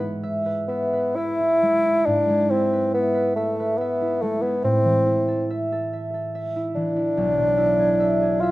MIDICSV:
0, 0, Header, 1, 3, 480
1, 0, Start_track
1, 0, Tempo, 943396
1, 588, Tempo, 886263
1, 1074, Time_signature, 3, 2, 24, 8
1, 1548, Tempo, 851064
1, 2988, Tempo, 835655
1, 4730, End_track
2, 0, Start_track
2, 0, Title_t, "Harp"
2, 0, Program_c, 0, 46
2, 0, Note_on_c, 0, 44, 48
2, 0, Note_on_c, 0, 56, 40
2, 0, Note_on_c, 0, 64, 37
2, 0, Note_on_c, 0, 71, 43
2, 0, Note_on_c, 0, 76, 44
2, 113, Note_off_c, 0, 76, 0
2, 119, Note_on_c, 0, 76, 54
2, 226, Note_off_c, 0, 71, 0
2, 232, Note_on_c, 0, 71, 42
2, 345, Note_off_c, 0, 76, 0
2, 351, Note_on_c, 0, 76, 42
2, 467, Note_off_c, 0, 71, 0
2, 473, Note_on_c, 0, 71, 39
2, 593, Note_off_c, 0, 76, 0
2, 599, Note_on_c, 0, 76, 45
2, 715, Note_off_c, 0, 64, 0
2, 722, Note_on_c, 0, 64, 38
2, 837, Note_off_c, 0, 56, 0
2, 843, Note_on_c, 0, 56, 42
2, 958, Note_off_c, 0, 64, 0
2, 965, Note_on_c, 0, 64, 41
2, 1076, Note_off_c, 0, 44, 0
2, 1082, Note_on_c, 0, 44, 48
2, 1198, Note_off_c, 0, 56, 0
2, 1204, Note_on_c, 0, 56, 41
2, 1314, Note_off_c, 0, 64, 0
2, 1321, Note_on_c, 0, 64, 40
2, 1434, Note_off_c, 0, 71, 0
2, 1441, Note_on_c, 0, 71, 38
2, 1552, Note_off_c, 0, 76, 0
2, 1558, Note_on_c, 0, 76, 45
2, 1664, Note_off_c, 0, 71, 0
2, 1671, Note_on_c, 0, 71, 42
2, 1789, Note_off_c, 0, 76, 0
2, 1796, Note_on_c, 0, 76, 41
2, 1919, Note_off_c, 0, 71, 0
2, 1926, Note_on_c, 0, 71, 40
2, 2038, Note_off_c, 0, 76, 0
2, 2044, Note_on_c, 0, 76, 44
2, 2153, Note_off_c, 0, 64, 0
2, 2160, Note_on_c, 0, 64, 40
2, 2273, Note_off_c, 0, 56, 0
2, 2280, Note_on_c, 0, 56, 39
2, 2385, Note_off_c, 0, 64, 0
2, 2391, Note_on_c, 0, 64, 41
2, 2512, Note_on_c, 0, 45, 51
2, 2530, Note_off_c, 0, 44, 0
2, 2532, Note_off_c, 0, 56, 0
2, 2532, Note_off_c, 0, 71, 0
2, 2631, Note_on_c, 0, 52, 37
2, 2743, Note_off_c, 0, 64, 0
2, 2750, Note_on_c, 0, 64, 44
2, 2874, Note_on_c, 0, 69, 39
2, 2994, Note_off_c, 0, 76, 0
2, 3001, Note_on_c, 0, 76, 48
2, 3119, Note_off_c, 0, 69, 0
2, 3126, Note_on_c, 0, 69, 40
2, 3239, Note_off_c, 0, 76, 0
2, 3246, Note_on_c, 0, 76, 44
2, 3358, Note_off_c, 0, 69, 0
2, 3365, Note_on_c, 0, 69, 40
2, 3480, Note_off_c, 0, 76, 0
2, 3487, Note_on_c, 0, 76, 46
2, 3601, Note_off_c, 0, 64, 0
2, 3608, Note_on_c, 0, 64, 41
2, 3716, Note_off_c, 0, 52, 0
2, 3722, Note_on_c, 0, 52, 39
2, 3832, Note_off_c, 0, 64, 0
2, 3838, Note_on_c, 0, 64, 44
2, 3959, Note_on_c, 0, 35, 49
2, 3969, Note_off_c, 0, 45, 0
2, 3972, Note_off_c, 0, 69, 0
2, 3973, Note_off_c, 0, 52, 0
2, 4074, Note_on_c, 0, 47, 38
2, 4184, Note_off_c, 0, 64, 0
2, 4191, Note_on_c, 0, 64, 47
2, 4314, Note_on_c, 0, 68, 44
2, 4427, Note_off_c, 0, 76, 0
2, 4434, Note_on_c, 0, 76, 46
2, 4550, Note_off_c, 0, 68, 0
2, 4557, Note_on_c, 0, 68, 44
2, 4673, Note_off_c, 0, 76, 0
2, 4680, Note_on_c, 0, 76, 47
2, 4730, Note_off_c, 0, 35, 0
2, 4730, Note_off_c, 0, 47, 0
2, 4730, Note_off_c, 0, 64, 0
2, 4730, Note_off_c, 0, 68, 0
2, 4730, Note_off_c, 0, 76, 0
2, 4730, End_track
3, 0, Start_track
3, 0, Title_t, "Bassoon"
3, 0, Program_c, 1, 70
3, 0, Note_on_c, 1, 59, 92
3, 105, Note_off_c, 1, 59, 0
3, 345, Note_on_c, 1, 59, 72
3, 587, Note_on_c, 1, 64, 94
3, 595, Note_off_c, 1, 59, 0
3, 1077, Note_on_c, 1, 62, 94
3, 1085, Note_off_c, 1, 64, 0
3, 1315, Note_on_c, 1, 60, 76
3, 1323, Note_off_c, 1, 62, 0
3, 1550, Note_off_c, 1, 60, 0
3, 1554, Note_on_c, 1, 59, 80
3, 1788, Note_off_c, 1, 59, 0
3, 1791, Note_on_c, 1, 57, 65
3, 2025, Note_on_c, 1, 59, 83
3, 2034, Note_off_c, 1, 57, 0
3, 2275, Note_on_c, 1, 57, 69
3, 2283, Note_off_c, 1, 59, 0
3, 2389, Note_on_c, 1, 59, 67
3, 2398, Note_off_c, 1, 57, 0
3, 2508, Note_off_c, 1, 59, 0
3, 2517, Note_on_c, 1, 60, 90
3, 2985, Note_off_c, 1, 60, 0
3, 3717, Note_on_c, 1, 62, 92
3, 4666, Note_on_c, 1, 65, 68
3, 4675, Note_off_c, 1, 62, 0
3, 4730, Note_off_c, 1, 65, 0
3, 4730, End_track
0, 0, End_of_file